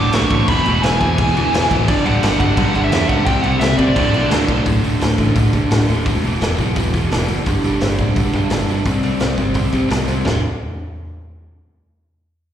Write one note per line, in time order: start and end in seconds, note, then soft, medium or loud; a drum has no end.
0.00 0.13 D2 medium
0.00 0.13 A2 medium
0.00 0.13 D3 loud
0.00 0.14 D6 loud
0.13 0.26 B1 loud
0.13 0.31 D2 loud
0.13 0.32 A2 loud
0.13 0.33 D3 loud
0.13 0.49 C#6 loud
0.13 snare loud
0.13 crash loud
0.30 0.43 A1 medium
0.30 0.48 D2 loud
0.30 0.49 A2 medium
0.30 0.49 D3 loud
0.30 kick loud
0.30 crash medium
0.48 0.60 E1 medium
0.48 0.67 E2 loud
0.48 0.66 B2 loud
0.48 0.85 B5 loud
0.48 kick loud
0.48 crash medium
0.52 0.67 E3 loud
0.66 0.79 E1 medium
0.66 0.83 E2 medium
0.66 0.85 B2 medium
0.66 0.85 E3 loud
0.66 crash medium
0.82 0.96 E1 medium
0.82 1.01 E2 medium
0.82 1.02 B2 loud
0.82 1.03 E3 medium
0.82 0.99 G#5 loud
0.82 snare loud
0.82 crash medium
1.00 1.13 E2 loud
1.00 1.20 E2 medium
1.00 1.21 B2 loud
1.00 1.21 E3 loud
1.00 1.66 G#5 loud
1.00 kick medium
1.00 crash medium
1.18 1.31 E2 loud
1.18 1.36 E2 medium
1.18 1.36 B2 medium
1.18 1.37 E3 loud
1.18 kick loud
1.18 crash medium
1.36 1.48 D2 medium
1.36 1.54 E2 medium
1.36 1.54 B2 medium
1.36 1.55 E3 loud
1.36 crash medium
1.53 1.65 E2 medium
1.53 1.70 E2 loud
1.53 1.71 B2 medium
1.53 1.72 E3 loud
1.53 snare loud
1.53 crash loud
1.71 1.83 D1 medium
1.71 1.87 E2 loud
1.71 1.88 B2 loud
1.71 1.88 E3 loud
1.71 kick loud
1.71 crash medium
1.88 2.01 G1 loud
1.88 2.05 G2 loud
1.88 2.05 D3 loud
1.88 2.05 G3 loud
1.88 2.06 D5 medium
1.88 kick loud
1.88 crash loud
2.06 2.18 D1 medium
2.06 2.21 G2 medium
2.06 2.22 D3 medium
2.06 2.22 G3 loud
2.06 2.38 F#5 loud
2.06 crash medium
2.23 2.35 G1 medium
2.23 2.39 G2 medium
2.23 2.39 D3 loud
2.23 2.40 G3 loud
2.23 snare loud
2.23 crash medium
2.40 2.52 G1 medium
2.40 2.57 G2 loud
2.40 2.57 D3 loud
2.40 2.57 G3 loud
2.40 2.80 F#5 loud
2.40 kick loud
2.40 crash medium
2.57 2.70 B1 loud
2.57 2.73 G2 loud
2.57 2.74 D3 medium
2.57 2.74 G3 loud
2.57 kick loud
2.57 crash medium
2.75 2.87 G1 loud
2.75 2.92 G2 loud
2.75 2.92 D3 medium
2.75 2.93 G3 loud
2.75 crash medium
2.84 3.08 E5 loud
2.92 3.04 E2 loud
2.92 3.09 G2 loud
2.92 3.10 D3 loud
2.92 3.10 G3 loud
2.92 snare loud
2.92 crash loud
3.09 3.22 C#2 medium
3.09 3.26 G2 medium
3.09 3.27 D3 medium
3.09 3.26 G3 loud
3.09 3.26 F#5 loud
3.09 kick loud
3.09 crash medium
3.26 3.39 C2 loud
3.26 3.43 C3 loud
3.26 3.43 G3 loud
3.26 3.44 C4 loud
3.26 3.42 G5 loud
3.26 kick loud
3.26 crash medium
3.42 3.56 C2 medium
3.42 3.61 C3 medium
3.42 3.61 G3 loud
3.42 3.62 C4 loud
3.42 3.59 F#5 medium
3.42 crash medium
3.59 3.73 C2 loud
3.59 3.78 C3 medium
3.59 3.79 G3 medium
3.59 3.79 C4 loud
3.59 3.78 E5 medium
3.59 snare loud
3.59 crash medium
3.77 3.96 C3 medium
3.77 3.91 C3 medium
3.77 3.96 G3 loud
3.77 3.96 C4 loud
3.77 4.27 D5 medium
3.77 kick medium
3.77 crash medium
3.96 4.09 D1 medium
3.96 4.12 D2 loud
3.96 4.13 A2 loud
3.96 4.13 D3 loud
3.96 kick loud
3.96 crash loud
4.13 4.26 B1 loud
4.13 4.28 D2 medium
4.13 4.28 A2 medium
4.13 4.29 D3 loud
4.13 crash medium
4.29 4.46 D2 medium
4.29 4.43 D2 loud
4.29 4.47 A2 loud
4.29 4.48 D3 loud
4.29 snare loud
4.29 crash loud
4.48 4.61 B1 medium
4.48 4.64 D2 medium
4.48 4.65 A2 loud
4.48 4.65 D3 loud
4.48 kick loud
4.48 crash medium
4.65 4.79 D1 loud
4.65 4.82 D2 loud
4.65 4.83 A2 medium
4.65 4.83 D3 loud
4.65 kick loud
4.65 open hi-hat medium
4.83 5.00 D2 medium
4.83 5.00 A2 medium
4.83 5.00 D3 medium
4.83 open hi-hat medium
5.00 5.14 D1 medium
5.00 5.17 D2 medium
5.00 5.18 A2 loud
5.00 5.18 D3 loud
5.00 snare loud
5.00 open hi-hat medium
5.18 5.32 A1 medium
5.18 5.34 D2 medium
5.18 5.34 A2 medium
5.18 5.35 D3 medium
5.18 kick medium
5.18 open hi-hat medium
5.35 5.49 D1 medium
5.35 5.51 D2 medium
5.35 5.52 A2 medium
5.35 5.52 D3 medium
5.35 kick loud
5.35 open hi-hat medium
5.52 5.69 D2 medium
5.52 5.67 D2 medium
5.52 5.70 A2 medium
5.52 5.70 D3 medium
5.52 kick medium
5.52 open hi-hat medium
5.70 5.84 D1 medium
5.70 5.87 D2 medium
5.70 5.88 A2 loud
5.70 5.88 D3 medium
5.70 snare loud
5.70 open hi-hat medium
5.88 6.01 D#1 medium
5.88 6.05 D2 medium
5.88 6.05 A2 medium
5.88 6.05 D3 medium
5.88 open hi-hat medium
6.06 6.19 E1 loud
6.06 6.23 E2 medium
6.06 6.24 B2 loud
6.06 6.24 E3 loud
6.06 kick loud
6.06 open hi-hat medium
6.24 6.37 E1 medium
6.24 6.41 E2 medium
6.24 6.41 B2 medium
6.24 6.42 E3 loud
6.24 open hi-hat medium
6.40 6.54 E1 medium
6.40 6.59 E2 loud
6.40 6.59 B2 loud
6.40 6.60 E3 loud
6.40 snare loud
6.40 open hi-hat medium
6.58 6.72 B1 medium
6.58 6.76 E2 medium
6.58 6.76 B2 medium
6.58 6.77 E3 loud
6.58 kick medium
6.58 open hi-hat medium
6.76 6.90 E1 medium
6.76 6.93 E2 medium
6.76 6.94 B2 loud
6.76 6.94 E3 loud
6.76 kick loud
6.76 open hi-hat medium
6.94 7.07 E2 medium
6.94 7.11 E2 medium
6.94 7.11 B2 medium
6.94 7.12 E3 medium
6.94 kick medium
6.94 open hi-hat medium
7.12 7.25 E1 medium
7.12 7.29 E2 medium
7.12 7.29 B2 loud
7.12 7.30 E3 medium
7.12 snare loud
7.12 open hi-hat medium
7.28 7.42 F#1 medium
7.28 7.46 E2 medium
7.28 7.46 B2 medium
7.28 7.46 E3 loud
7.28 open hi-hat medium
7.46 7.60 G1 loud
7.46 7.63 G2 loud
7.46 7.64 D3 loud
7.46 7.65 G3 loud
7.46 kick loud
7.46 open hi-hat medium
7.64 7.77 G1 medium
7.64 7.82 G2 medium
7.64 7.82 D3 medium
7.64 7.84 G3 loud
7.64 open hi-hat medium
7.81 7.94 G1 medium
7.81 7.99 G2 loud
7.81 8.00 D3 medium
7.81 8.01 G3 loud
7.81 snare loud
7.81 open hi-hat medium
7.98 8.12 D1 medium
7.98 8.16 G2 medium
7.98 8.17 D3 medium
7.98 8.17 G3 medium
7.98 kick medium
7.98 open hi-hat medium
8.16 8.30 G1 medium
8.16 8.34 G2 medium
8.16 8.35 D3 medium
8.16 8.34 G3 loud
8.16 kick loud
8.16 open hi-hat medium
8.33 8.47 G2 medium
8.33 8.51 G2 medium
8.33 8.52 D3 medium
8.33 8.52 G3 loud
8.33 kick medium
8.33 open hi-hat soft
8.50 8.65 G1 medium
8.50 8.68 G2 medium
8.50 8.69 D3 medium
8.50 8.70 G3 loud
8.50 snare loud
8.50 open hi-hat medium
8.68 8.82 G1 medium
8.68 8.85 G2 medium
8.68 8.86 D3 medium
8.68 8.85 G3 medium
8.68 open hi-hat medium
8.85 8.99 C2 loud
8.85 9.01 C3 medium
8.85 9.02 G3 medium
8.85 9.03 C4 loud
8.85 kick loud
8.85 open hi-hat medium
9.03 9.17 C2 medium
9.03 9.19 C3 medium
9.03 9.19 G3 medium
9.03 9.20 C4 medium
9.03 open hi-hat medium
9.20 9.34 C2 medium
9.20 9.37 C3 medium
9.20 9.37 G3 medium
9.20 9.37 C4 loud
9.20 snare loud
9.20 open hi-hat medium
9.38 9.52 G1 medium
9.38 9.53 C3 medium
9.38 9.54 G3 medium
9.38 9.54 C4 medium
9.38 kick medium
9.38 open hi-hat soft
9.54 9.69 C2 medium
9.54 9.71 C3 medium
9.54 9.72 G3 medium
9.54 9.72 C4 loud
9.54 kick loud
9.54 open hi-hat medium
9.72 9.87 C3 medium
9.72 9.86 C3 medium
9.72 9.88 G3 medium
9.72 9.89 C4 medium
9.72 kick medium
9.72 open hi-hat medium
9.88 10.04 C2 medium
9.88 10.06 C3 medium
9.88 10.07 G3 medium
9.88 10.07 C4 loud
9.88 snare loud
9.88 open hi-hat medium
10.07 10.22 C2 medium
10.07 10.24 C3 medium
10.07 10.25 G3 medium
10.07 10.25 C4 medium
10.07 open hi-hat medium
10.24 10.42 D1 medium
10.24 10.39 D2 medium
10.24 10.40 A2 medium
10.24 10.40 D3 loud
10.24 snare loud
10.24 floor tom loud